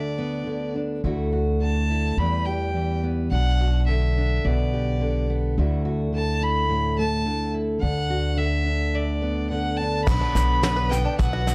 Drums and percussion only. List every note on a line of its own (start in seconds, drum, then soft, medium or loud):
10.07 kick loud
10.07 snare soft
10.07 crash medium
10.07 shaker medium
10.36 snare soft
10.36 shaker medium
10.63 snare loud
10.63 shaker medium
10.92 snare soft
10.92 shaker medium
11.19 kick medium
11.19 snare soft
11.19 shaker medium
11.47 snare soft
11.47 shaker medium